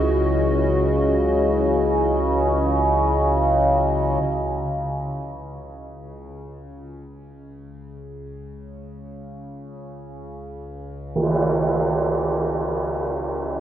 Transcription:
0, 0, Header, 1, 4, 480
1, 0, Start_track
1, 0, Key_signature, 4, "minor"
1, 0, Tempo, 500000
1, 13058, End_track
2, 0, Start_track
2, 0, Title_t, "Analog synth pad"
2, 0, Program_c, 0, 89
2, 0, Note_on_c, 0, 61, 60
2, 0, Note_on_c, 0, 64, 59
2, 0, Note_on_c, 0, 66, 63
2, 0, Note_on_c, 0, 75, 75
2, 4068, Note_off_c, 0, 61, 0
2, 4071, Note_off_c, 0, 75, 0
2, 4075, Note_off_c, 0, 66, 0
2, 4076, Note_off_c, 0, 64, 0
2, 13058, End_track
3, 0, Start_track
3, 0, Title_t, "Synth drone"
3, 0, Program_c, 1, 95
3, 0, Note_on_c, 1, 37, 66
3, 0, Note_on_c, 1, 49, 67
3, 4065, Note_off_c, 1, 49, 0
3, 4067, Note_off_c, 1, 37, 0
3, 4077, Note_on_c, 1, 49, 72
3, 4078, Note_on_c, 1, 37, 76
3, 13058, Note_off_c, 1, 37, 0
3, 13058, Note_off_c, 1, 49, 0
3, 13058, End_track
4, 0, Start_track
4, 0, Title_t, "Tam-tam"
4, 10714, Note_on_c, 9, 52, 73
4, 10810, Note_off_c, 9, 52, 0
4, 13058, End_track
0, 0, End_of_file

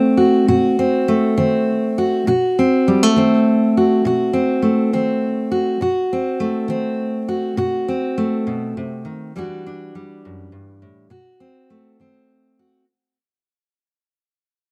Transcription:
0, 0, Header, 1, 2, 480
1, 0, Start_track
1, 0, Tempo, 588813
1, 1855, Time_signature, 12, 3, 24, 8
1, 11996, End_track
2, 0, Start_track
2, 0, Title_t, "Steel-string acoustic guitar"
2, 0, Program_c, 0, 25
2, 0, Note_on_c, 0, 51, 56
2, 0, Note_on_c, 0, 57, 57
2, 0, Note_on_c, 0, 60, 55
2, 0, Note_on_c, 0, 66, 59
2, 108, Note_off_c, 0, 51, 0
2, 139, Note_off_c, 0, 66, 0
2, 142, Note_on_c, 0, 66, 49
2, 391, Note_off_c, 0, 66, 0
2, 394, Note_on_c, 0, 47, 63
2, 395, Note_on_c, 0, 66, 55
2, 640, Note_off_c, 0, 60, 0
2, 643, Note_on_c, 0, 60, 51
2, 836, Note_off_c, 0, 47, 0
2, 879, Note_off_c, 0, 57, 0
2, 882, Note_on_c, 0, 57, 59
2, 1118, Note_off_c, 0, 60, 0
2, 1121, Note_on_c, 0, 51, 57
2, 1121, Note_on_c, 0, 60, 56
2, 1561, Note_off_c, 0, 51, 0
2, 1612, Note_off_c, 0, 66, 0
2, 1615, Note_on_c, 0, 66, 52
2, 1852, Note_on_c, 0, 47, 67
2, 1854, Note_off_c, 0, 66, 0
2, 1858, Note_on_c, 0, 66, 60
2, 1877, Note_off_c, 0, 57, 0
2, 1877, Note_off_c, 0, 60, 0
2, 2109, Note_on_c, 0, 60, 52
2, 2287, Note_off_c, 0, 47, 0
2, 2346, Note_on_c, 0, 55, 57
2, 2469, Note_off_c, 0, 55, 0
2, 2469, Note_on_c, 0, 57, 41
2, 2578, Note_on_c, 0, 51, 59
2, 2586, Note_off_c, 0, 60, 0
2, 2589, Note_on_c, 0, 60, 54
2, 3010, Note_off_c, 0, 51, 0
2, 3073, Note_off_c, 0, 66, 0
2, 3076, Note_on_c, 0, 66, 52
2, 3302, Note_on_c, 0, 47, 70
2, 3311, Note_off_c, 0, 66, 0
2, 3315, Note_on_c, 0, 66, 59
2, 3523, Note_off_c, 0, 60, 0
2, 3533, Note_on_c, 0, 60, 59
2, 3732, Note_off_c, 0, 47, 0
2, 3760, Note_off_c, 0, 57, 0
2, 3770, Note_on_c, 0, 57, 53
2, 4013, Note_off_c, 0, 60, 0
2, 4021, Note_on_c, 0, 51, 57
2, 4025, Note_on_c, 0, 60, 56
2, 4452, Note_off_c, 0, 51, 0
2, 4492, Note_off_c, 0, 66, 0
2, 4496, Note_on_c, 0, 66, 52
2, 4706, Note_off_c, 0, 57, 0
2, 4712, Note_off_c, 0, 60, 0
2, 4736, Note_on_c, 0, 47, 64
2, 4742, Note_off_c, 0, 66, 0
2, 4746, Note_on_c, 0, 66, 62
2, 4995, Note_on_c, 0, 60, 52
2, 5170, Note_off_c, 0, 47, 0
2, 5218, Note_on_c, 0, 57, 62
2, 5447, Note_on_c, 0, 51, 63
2, 5450, Note_off_c, 0, 60, 0
2, 5460, Note_on_c, 0, 60, 55
2, 5885, Note_off_c, 0, 51, 0
2, 5935, Note_off_c, 0, 66, 0
2, 5939, Note_on_c, 0, 66, 54
2, 6173, Note_on_c, 0, 47, 75
2, 6177, Note_off_c, 0, 66, 0
2, 6180, Note_on_c, 0, 66, 60
2, 6419, Note_off_c, 0, 60, 0
2, 6427, Note_on_c, 0, 60, 57
2, 6608, Note_off_c, 0, 47, 0
2, 6656, Note_off_c, 0, 57, 0
2, 6665, Note_on_c, 0, 57, 58
2, 6903, Note_on_c, 0, 47, 61
2, 7140, Note_off_c, 0, 47, 0
2, 7150, Note_on_c, 0, 48, 63
2, 7376, Note_on_c, 0, 51, 56
2, 7384, Note_off_c, 0, 48, 0
2, 7592, Note_off_c, 0, 57, 0
2, 7593, Note_off_c, 0, 60, 0
2, 7617, Note_off_c, 0, 51, 0
2, 7627, Note_on_c, 0, 40, 66
2, 7631, Note_on_c, 0, 55, 57
2, 7636, Note_on_c, 0, 52, 54
2, 7645, Note_on_c, 0, 62, 58
2, 7647, Note_off_c, 0, 66, 0
2, 7650, Note_on_c, 0, 66, 68
2, 7869, Note_off_c, 0, 62, 0
2, 7879, Note_on_c, 0, 62, 55
2, 8054, Note_off_c, 0, 40, 0
2, 8104, Note_off_c, 0, 55, 0
2, 8112, Note_on_c, 0, 55, 59
2, 8357, Note_on_c, 0, 42, 55
2, 8573, Note_off_c, 0, 42, 0
2, 8577, Note_on_c, 0, 43, 60
2, 8816, Note_off_c, 0, 43, 0
2, 8820, Note_on_c, 0, 45, 60
2, 9036, Note_off_c, 0, 52, 0
2, 9037, Note_off_c, 0, 62, 0
2, 9042, Note_off_c, 0, 66, 0
2, 9047, Note_off_c, 0, 45, 0
2, 9050, Note_on_c, 0, 47, 73
2, 9057, Note_on_c, 0, 66, 61
2, 9063, Note_off_c, 0, 55, 0
2, 9295, Note_on_c, 0, 60, 56
2, 9484, Note_off_c, 0, 47, 0
2, 9539, Note_on_c, 0, 57, 51
2, 9774, Note_off_c, 0, 60, 0
2, 9779, Note_on_c, 0, 51, 52
2, 9787, Note_on_c, 0, 60, 52
2, 10208, Note_off_c, 0, 51, 0
2, 10254, Note_off_c, 0, 66, 0
2, 10265, Note_on_c, 0, 66, 52
2, 10466, Note_off_c, 0, 57, 0
2, 10470, Note_off_c, 0, 60, 0
2, 10470, Note_off_c, 0, 66, 0
2, 11996, End_track
0, 0, End_of_file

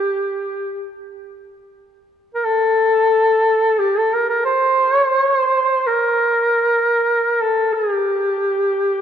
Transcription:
0, 0, Header, 1, 2, 480
1, 0, Start_track
1, 0, Key_signature, -2, "minor"
1, 0, Tempo, 500000
1, 8653, End_track
2, 0, Start_track
2, 0, Title_t, "Duduk"
2, 0, Program_c, 0, 69
2, 0, Note_on_c, 0, 67, 79
2, 918, Note_off_c, 0, 67, 0
2, 2252, Note_on_c, 0, 70, 62
2, 2350, Note_on_c, 0, 69, 90
2, 2364, Note_off_c, 0, 70, 0
2, 3637, Note_on_c, 0, 67, 75
2, 3651, Note_off_c, 0, 69, 0
2, 3821, Note_on_c, 0, 69, 69
2, 3835, Note_off_c, 0, 67, 0
2, 3973, Note_on_c, 0, 70, 72
2, 3987, Note_off_c, 0, 69, 0
2, 4105, Note_off_c, 0, 70, 0
2, 4120, Note_on_c, 0, 70, 66
2, 4256, Note_off_c, 0, 70, 0
2, 4274, Note_on_c, 0, 72, 90
2, 4744, Note_off_c, 0, 72, 0
2, 4744, Note_on_c, 0, 73, 90
2, 4869, Note_off_c, 0, 73, 0
2, 4869, Note_on_c, 0, 72, 90
2, 5003, Note_off_c, 0, 72, 0
2, 5003, Note_on_c, 0, 73, 90
2, 5128, Note_off_c, 0, 73, 0
2, 5128, Note_on_c, 0, 72, 90
2, 5634, Note_on_c, 0, 70, 81
2, 5648, Note_off_c, 0, 72, 0
2, 7121, Note_on_c, 0, 69, 68
2, 7135, Note_off_c, 0, 70, 0
2, 7425, Note_on_c, 0, 68, 67
2, 7440, Note_off_c, 0, 69, 0
2, 7608, Note_off_c, 0, 68, 0
2, 7608, Note_on_c, 0, 67, 67
2, 8653, Note_off_c, 0, 67, 0
2, 8653, End_track
0, 0, End_of_file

